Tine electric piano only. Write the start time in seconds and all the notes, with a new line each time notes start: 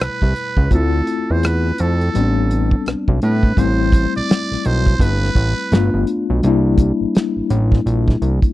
Already playing: B2 G3 A3 E4
0.71 A3 C4 F4
0.75 E4
2.14 G3 B3 C4
2.18 D4
3.57 G3 A3 C4
3.61 E4
5.72 A3 B3 D4 F4
6.43 G3 A#3 D4
6.48 E4